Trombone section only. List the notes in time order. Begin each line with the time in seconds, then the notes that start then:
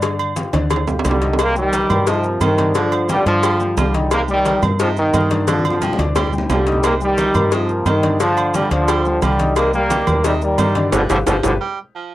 1.06 D3 G3
1.40 G3 A#3
1.58 D#3 G3
2.09 C3 F3
2.43 C3 D#3
2.76 D3 F3
3.10 D3 G3
3.27 D3 F3
3.79 D3 G3
4.13 G3 A#3
4.30 D#3 G3
4.82 C3 F3
4.98 C3 D#3
5.50 D3 F3
5.67 D3 F3
6.52 D3 G3
6.86 G3 A#3
7.03 D#3 G3
7.54 C3 F3
7.88 C3 D#3
8.21 D3 F3
8.55 D3 G3
8.72 D3 F3
9.23 D3 G3
9.57 G3 A#3
9.74 G3 A#3
10.25 D#3 G3
10.43 D#3 G3
10.94 D3 F3 G3
11.10 D3 F3 G3
11.27 D3 F3 G3
11.44 D3 F3 G3